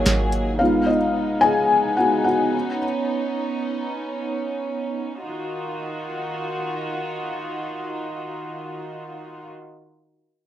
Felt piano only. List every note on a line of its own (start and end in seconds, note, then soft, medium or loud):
0.00 0.62 F#3 soft
0.00 0.61 D#4 soft
0.00 0.61 F4 medium
0.00 0.62 F#4 medium
0.00 0.59 F5 medium
0.00 0.62 F#5 medium
0.59 0.97 G#3 soft
0.59 0.97 B3 soft
0.59 0.87 D#4 medium
0.59 0.86 F4 medium
0.59 0.88 F5 medium
0.86 1.40 D#4 medium
0.86 1.38 D#5 medium
1.41 1.95 G#4 medium
1.41 1.93 G#5 loud
1.97 2.23 G#3 soft
1.97 2.24 B3 soft
1.97 2.24 D#4 soft
1.97 2.25 F#4 soft
1.97 2.23 F#5 medium
2.24 2.80 F#4 medium
2.24 2.78 F#5 medium